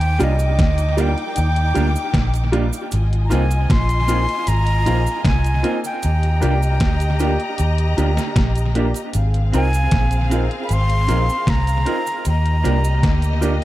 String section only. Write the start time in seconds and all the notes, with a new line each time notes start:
Already playing: D#4 G5 D6
2.92 F4 D#5 G#5
6.03 G4 D#5 A#5
9.14 C4 G#4 F5
12.26 A#3 G4 D#5